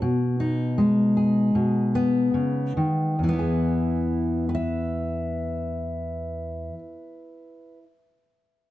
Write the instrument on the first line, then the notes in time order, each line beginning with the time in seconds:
steel-string acoustic guitar
0.02 B2
0.40 D#4
0.78 G#3
1.17 G#4
1.55 B2
1.95 B3
2.34 C#3
2.77 D#3
3.19 E2
3.24 E3
3.29 B3
3.33 E4
3.39 G#4
4.49 B4
4.55 E5